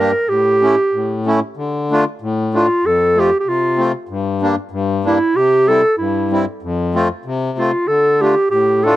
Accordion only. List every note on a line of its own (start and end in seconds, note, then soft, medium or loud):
0.00 0.13 G2 medium
0.00 0.11 A#3 medium
0.00 0.11 D4 medium
0.00 0.12 G4 medium
0.29 0.76 A2 medium
0.62 0.75 A3 medium
0.62 0.75 C#4 medium
0.62 0.76 E4 medium
0.93 1.41 A2 soft
1.26 1.39 A3 medium
1.26 1.40 C#4 medium
1.26 1.40 E4 medium
1.57 2.05 D3 medium
1.91 2.04 A3 medium
1.91 2.04 D4 medium
1.91 2.05 F4 medium
2.22 2.68 A2 medium
2.54 2.67 A3 medium
2.54 2.67 D4 medium
2.54 2.67 F4 medium
2.84 3.31 F2 medium
3.16 3.29 A3 medium
3.16 3.29 C4 medium
3.16 3.30 F4 medium
3.46 3.93 C3 medium
3.78 3.91 A3 medium
3.78 3.91 C4 medium
3.78 3.92 F4 medium
4.09 4.56 G2 medium
4.41 4.55 G3 medium
4.41 4.55 A#3 medium
4.41 4.56 D4 medium
4.71 5.19 G2 medium
5.04 5.18 G3 medium
5.04 5.18 A#3 medium
5.04 5.19 D4 medium
5.35 5.83 C3 medium
5.68 5.81 G3 medium
5.68 5.82 C4 soft
5.68 5.82 E4 medium
5.98 6.46 G2 medium
6.31 6.45 G3 medium
6.31 6.45 C4 soft
6.31 6.45 E4 medium
6.63 7.10 F2 medium
6.94 7.08 A3 medium
6.94 7.08 C4 medium
6.94 7.08 F4 medium
7.25 7.72 C3 medium
7.58 7.71 A3 medium
7.58 7.71 C4 medium
7.58 7.72 F4 medium
7.88 8.35 D3 medium
8.21 8.34 A3 medium
8.21 8.34 D4 medium
8.21 8.35 F4 medium
8.51 8.96 A2 medium
8.85 8.96 A3 medium
8.85 8.96 D4 medium
8.85 8.96 F4 medium